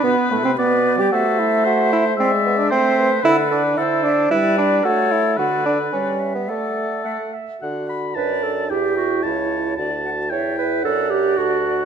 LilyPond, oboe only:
\new Staff \with { instrumentName = "Oboe" } { \time 2/4 \key a \dorian \tempo 4 = 112 b'4 d''4 | a'4 c''4 | e''4 c''4 | \key d \major b'4 a'4 |
b'4 a'4 | b'4. r8 | a'4. r8 | fis''8 b''8 a''4 |
g''4 a''4 | a''4 g''4 | fis''4 fis''4 | }